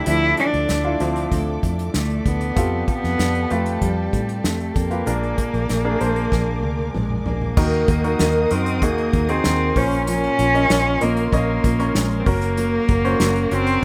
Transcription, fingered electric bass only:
0.07 D2
0.54 D2
0.70 D2
1.00 D2
1.32 D2
1.63 F2
1.95 D2
2.26 D2
2.57 F2
3.04 F2
3.19 F2
3.51 F2
3.82 F2
4.13 A2
4.44 F2
4.76 F2
5.07 A#1
5.54 A#1
5.70 A#1
6.01 A#1
6.32 A#1
6.64 D2
6.95 A#1
7.26 A#1
7.57 D#2
7.88 D#2
8.20 D#2
8.51 F#2
8.82 D#2
9.13 D#2
9.45 D#2
9.76 A#1
10.39 A#1
10.70 A#1
11.02 A#1
11.33 A#1
11.64 A#1
11.96 A#1
12.26 F#1
12.89 F#1
13.20 F#1
13.51 F#1

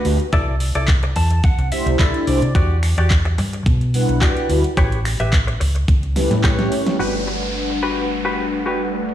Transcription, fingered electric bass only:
0.05 D2
0.33 C2
0.75 C2
1.16 E2
1.58 C2
1.86 C2
2.27 C2
2.42 C3
2.55 E2
2.98 E2
3.38 G2
3.66 B2
4.09 B1
4.49 D2
4.77 A1
5.20 A1
5.61 C#2
5.88 C#2
6.31 A2
6.99 G1

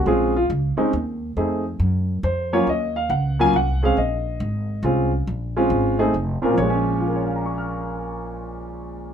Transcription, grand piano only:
0.06 G#3 C4 C#4 F4 G#4
0.36 F4
0.77 G#3 C4 C#4 D#4
1.37 A3 C4 D#4 G#4
2.24 C5
2.53 F#3 A#3 C#4 F4 C#5
2.69 D#5
2.96 F5
3.10 F#5
3.39 F#3 A#3 C#4 F4 G#5
3.56 F#5
3.82 G#3 C4 C#4 G#4 F5
3.98 D#5
4.84 G#3 C4 C#4 F4
5.56 G#3 C4 C#4 F4
5.99 A3 C4 D#4 G#4
6.42 A#2 C4 C#4 F4 A#4
6.53 F3
6.58 C#5
6.62 G#3
6.70 C#4
7.00 F4
7.08 A#4
7.16 C#5
7.25 F5
7.35 A#5
7.46 C#6
7.58 F6

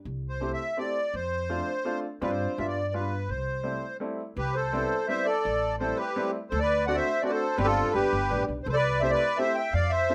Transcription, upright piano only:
0.40 A3 C4 E4 G4
0.77 A3 C4 E4 G4
1.49 A3 C4 D4 F4
1.84 A3 C4 D4 F4
2.21 G3 C4 D4 F4
2.58 G3 B3 D4 F4
2.94 G3 B3 D4 F4
3.63 G3 A3 C4 E4
4.00 G3 A3 C4 E4
4.73 G3 B3 C4 E4
5.08 G3 B3 C4 E4
5.80 G3 A3 C4 E4
6.16 G3 A3 C4 E4
6.87 A3 C4 D4 F#4
7.23 A3 C4 D4 F#4
7.58 G3 C4 D4 G4
7.94 G3 B3 D4 G4
8.30 G3 B3 D4 G4
9.02 A3 C4 E4 G4
9.38 A3 C4 E4 G4
10.09 A3 C4 D4 F4

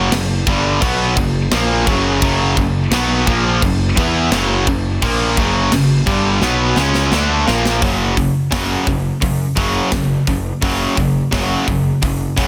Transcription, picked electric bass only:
0.12 F#1
0.47 G1
0.82 B1
1.16 F#1
1.52 A#1
1.87 F#1
2.22 F#1
2.58 F#1
2.91 B1
3.28 A#1
3.62 F#1
3.97 E2
4.31 F#1
4.67 F#1
5.02 A#1
5.38 F#1
5.71 F#1
6.07 G1
6.41 B1
6.76 C#2
7.11 D2
7.48 A#1
7.82 F#1
8.52 F#1
8.87 F#1
9.22 F#2
9.57 F#1
9.92 F#1
10.28 F#1
10.62 F#1
10.97 F#1
11.32 F#1
11.67 F#1
12.02 F#1
12.38 F#1

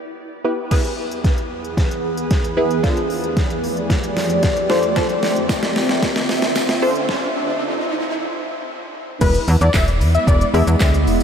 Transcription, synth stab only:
Already playing: B3 E4 G4 D5
0.44 B3 E4 G4 B4
0.71 B3 E4 G#4 B4
2.57 B3 E4 G#4 B4
2.83 D4 F4 A4 C5
4.70 D4 F4 A4 C5
4.96 D4 F4 A4 C5
6.82 D4 F4 A4 C5
9.21 G#3 B3 E4 G#4 B4
10.54 G#3 B3 E4 G#4 D5

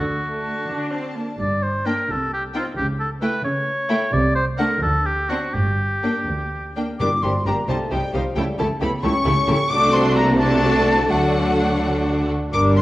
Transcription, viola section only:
0.21 A3
0.68 D4
0.92 C4
1.15 A#3
1.86 A#3
2.55 C4
3.22 A3
3.89 A3
4.58 A3
5.29 C4
6.03 A#3
6.76 A#3
7.00 G3 D4
7.23 G3 D4
7.46 G3 D4
7.69 G3 D#4
7.92 G3 D#4
8.14 G3 D#4
8.36 A3 E4
8.59 A3 E4
8.81 A3 E4
9.03 A3 E4
9.25 A3 E4
9.47 A3 E4
9.70 A3 D4
10.39 A3 D4
11.10 A3 D4
12.53 G3 D4

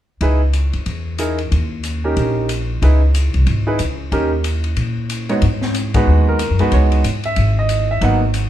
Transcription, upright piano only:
0.21 D#4 E4 G#4 B4
1.19 D#4 E4 G#4 A#4
2.04 C#4 D#4 G4 A#4
2.82 D#4 E4 G#4 B4
3.67 D#4 E4 G#4 B4
4.12 C#4 D#4 G4 A#4
5.29 G#2 B3 D#4 F#4 C#5
5.94 G#3 B3 D#4 F#4 B4
6.29 A#4
6.59 G#3 B3 D#4 F#4 B4
6.73 C#5
7.25 E5
7.59 D#5
7.91 E5
8.02 F#3 A#3 B3 D#4 F#5

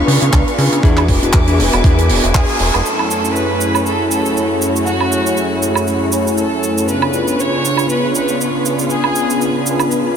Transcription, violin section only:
2.35 G#4
2.85 A4
3.35 B4
3.86 A4
4.11 A4
4.86 F#4
6.38 A4
6.89 B4
7.39 C#5
7.89 B4
8.15 B4
8.90 G#4

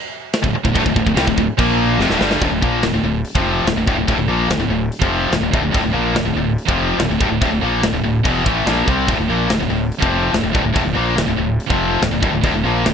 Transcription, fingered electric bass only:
0.44 D1
0.53 muted fingered electric bass stroke
0.65 D1
0.75 D1
0.86 D1
0.96 D1
1.06 D1
1.15 C2
1.27 D1
1.37 D1
1.58 A#1
1.99 F1
2.10 D1
2.20 G1
2.41 D1
2.52 D1
2.62 A#1
2.83 D1
2.93 D1
3.03 D1
3.35 F1
3.65 D1
3.75 D1
3.87 D1
3.96 D1
4.08 D1
4.17 D1
4.27 A#1
4.48 D1
4.57 D1
4.68 D1
5.01 F1
5.31 D1
5.41 D1
5.53 D1
5.62 D1
5.75 D1
5.84 D1
5.94 A#1
6.15 D1
6.25 D1
6.35 D1
6.68 F1
6.98 D1
7.09 D1
7.20 D1
7.30 D1
7.41 D1
7.51 D1
7.61 A#1
7.83 D1
7.92 D1
8.04 D1
8.25 E1
8.46 A1
8.66 A#1
8.87 C2
9.08 D1
9.18 D1
9.29 A#1
9.50 D1
9.60 D1
9.70 D1
10.02 F1
10.33 D1
10.44 D1
10.55 D1
10.64 D1
10.76 D1
10.85 D1
10.95 A#1
11.17 D1
11.27 D1
11.38 D1
11.70 F1
12.01 D1
12.11 D1
12.23 D1
12.32 D1
12.43 D1
12.53 D1
12.63 A#1
12.85 D1

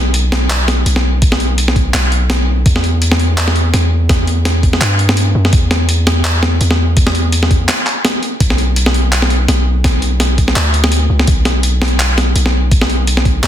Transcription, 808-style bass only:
Already playing: B1
0.86 B1
1.94 B1
2.66 E2
3.74 E2
4.81 G2
5.35 F#2
5.53 E2
6.61 E2
8.40 B1
9.48 B1
10.56 D2
11.10 C#2
11.28 B1
12.36 B1
13.43 B1

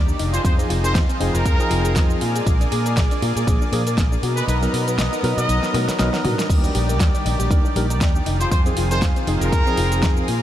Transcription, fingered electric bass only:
Already playing: D#2
0.20 F1
0.45 F2
0.70 F1
0.95 F2
1.20 F1
1.34 F1
1.45 F2
1.71 F1
1.96 F2
2.22 A#2
2.46 A#1
2.72 A#2
2.97 A#1
3.22 A#2
3.36 A#2
3.47 A#1
3.72 A#2
3.97 A#1
4.23 B2
4.48 B1
4.73 B2
4.98 B1
5.23 B2
5.37 B2
5.49 B1
5.74 B2
5.88 muted fingered electric bass stroke
5.99 B1
6.25 B2
6.50 D#2
6.75 A#1
7.00 D#2
7.26 A#1
7.39 A#1
7.50 D#2
7.76 A#1
8.01 D#2
8.26 F1
8.51 F2
8.77 F1
9.02 F2
9.27 F1
9.41 F1
9.52 F2
9.78 F1
10.03 F2
10.28 A#2

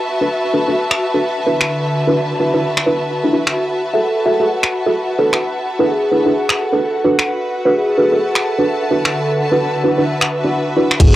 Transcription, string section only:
Already playing: F#4 B4 E5 A5
1.47 D3
5.19 F#4
7.25 B4 E5
7.90 A5
8.91 D3

